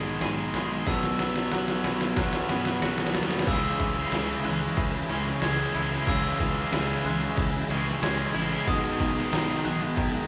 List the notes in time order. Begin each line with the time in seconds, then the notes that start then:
Already playing: B1 G#2 B2 D#3 G#3 B3 D#4 G#4 G#6
0.21 B1 G#2 B2 D#3 G#3 D#4 G#4, snare
0.54 B1 G#2 B2 D#3 G#3 D#4 G#4, snare
0.87 B1 B2 F#3 B3 C#4 F#4 E6, kick, snare
1.03 snare
1.19 B1 B2 F#3 B3 C#4 F#4, snare
1.36 snare
1.52 B1 B2 F#3 B3 C#4 F#4 F#6, snare
1.68 snare
1.84 B1 B2 F#3 B3 C#4 F#4, snare
2.01 snare
2.16 B1 B2 F#3 B3 C#4 F#4 F#6, kick, snare
2.33 snare
2.49 F#2 B2 F#3 B3 C#4 F#4, snare
2.65 snare
2.81 B1 B2 F#3 B3 C#4 F#4, snare
2.98 snare
3.07 snare
3.15 D#2 B2 F#3 B3 C#4 F#4, snare
3.23 snare
3.31 snare
3.39 snare
3.46 C#2 C#3 E3 G#3 C#4 E6, kick, crash
3.79 C#2 C#3 E3 G#3 C#4, kick, crash
3.95 E3 G#3 C#4
4.12 C#2 C#3 E3 G#3 C#4, snare, crash
4.28 E3 G#3 C#4
4.44 C#2 C#3 E3 G#3 C#4 F#6, muted distorted electric guitar stroke, crash
4.60 E3 G#3 C#4, muted distorted electric guitar stroke
4.77 C#2 E3, kick, crash
4.93 E3 G#3 C#4
5.09 C#2 C#3 E3 G#3 C#4, crash
5.26 muted distorted electric guitar stroke, snare
5.41 C#2 C#3 E3 G#3 C#4 G#6, snare, crash
5.73 C#2 C#3 E3 G#3 C#4 E4, crash
5.90 E3 G#3 C#4
6.06 C#2 C#3 E3 G#3 C#4 E6, kick, crash
6.39 C#2 C#3 E3 G#3 C#4, kick, crash
6.56 E3 G#3 C#4
6.71 C#2 C#3 E3 G#3 C#4, snare, crash
6.88 E3 G#3 C#4
7.04 C#2 C#3 E3 G#3 C#4 F#6, muted distorted electric guitar stroke, crash
7.20 E3 G#3 C#4, muted distorted electric guitar stroke
7.38 C#2 E3, kick, crash
7.52 E3 G#3 C#4
7.68 C#2 C#3 E3 G#3 C#4, crash
7.86 muted distorted electric guitar stroke, snare
8.01 C#2 C#3 E3 G#3 C#4 G#6, snare, crash
8.33 A1 C#3 E3 G#3 C#4 E4, crash
8.50 E3 G#3 C#4
8.66 B1 B2 D#3 G#3 D#4 D#6, kick, crash
8.98 B1 B2 D#3 G#3 D#4, kick, crash
9.15 D#3 G#3 D#4
9.31 B1 B2 D#3 G#3 D#4, snare, crash
9.46 D#3 G#3 D#4
9.63 B1 B2 D#3 G#3 D#4 F#6, muted distorted electric guitar stroke, crash
9.79 D#3 G#3 D#4, muted distorted electric guitar stroke
9.97 B1 D#3, kick, crash
10.11 D#3 G#3 D#4